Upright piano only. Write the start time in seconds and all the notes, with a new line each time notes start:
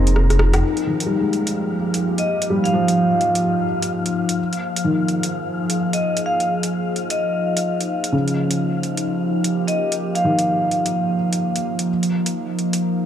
Already playing: C4 C#4
0.87 D#3
1.06 G3
1.20 G#3
2.50 G3
2.73 F3
4.84 D#3
8.12 C#3
10.24 D#3